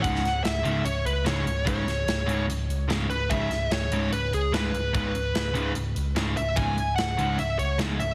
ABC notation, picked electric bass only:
X:1
M:4/4
L:1/8
Q:1/4=147
K:C#m
V:1 name="Picked electric bass" clef=bass
C,,, C,,, C,,, C,,, C,,, C,, C,,, C,,, | C,,, C,,, C,,, C,,, C,,, C,, C,,, C,,, | C,,, C,,, C,,, C,,, C,,, C,, C,,, C,,, | C,,, C,,, C,,, C,,, C,,, C,, C,,, C,,, |
C,,, C,,, C,,, C,,, C,,, C,, C,,, C,,, |]